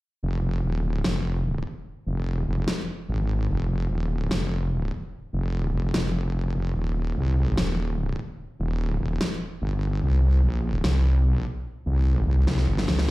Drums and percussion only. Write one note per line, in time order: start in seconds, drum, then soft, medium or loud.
1.04 snare loud
2.68 snare loud
4.31 snare loud
5.94 snare loud
7.58 snare loud
9.21 snare loud
10.84 snare loud
12.47 snare medium
12.58 snare medium
12.78 snare medium
12.88 snare medium
12.99 snare medium